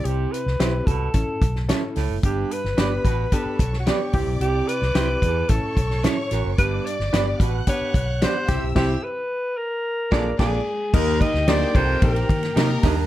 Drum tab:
CC |----------------|----------------|----------------|----------------|
RD |----------------|----------------|----------------|----------------|
HH |x-x-x-x-x-x-x-o-|x-x-x-x-x-x-x-o-|x-x-x-x-x-x-x-x-|x-x-x-x-x-x-x-x-|
SD |---oo------oo-o-|---oo------oo---|---oo------oo-o-|---oo-------o-o-|
BD |------o-o-o-----|o-----o-o-o---o-|------o-o-o-----|o-----o-o-o---o-|

CC |x-----------x---|x---------------|
RD |----------------|--x-x-x-xxxxx-x-|
HH |----------------|--------------o-|
SD |o---------o-o---|---oo------oo-o-|
BD |o---------o-o---|o-o---o-o-o---o-|